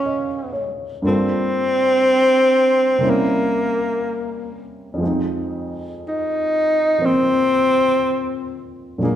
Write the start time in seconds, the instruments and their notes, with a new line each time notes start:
Already playing: grand piano A#2 F3 G#3 A#3 C#4 D#4 C5 C#5 F5, tenor saxophone C#4
0.06 grand piano D#5
0.53 grand piano C#5
1.02 grand piano G2 G3 A#3 F4
1.06 tenor saxophone C4, grand piano A4
2.98 grand piano C3 G3 A#3 C#4
3.03 grand piano E4
3.10 tenor saxophone A#3
4.94 grand piano F2 F3
5.00 grand piano G#3 C4
5.06 grand piano D#4
6.08 tenor saxophone D#4
6.99 grand piano F3 A#3 C4
7.05 tenor saxophone C4
8.98 grand piano A#2 F#3 G#3 D4
9.03 tenor saxophone A#3, grand piano G#4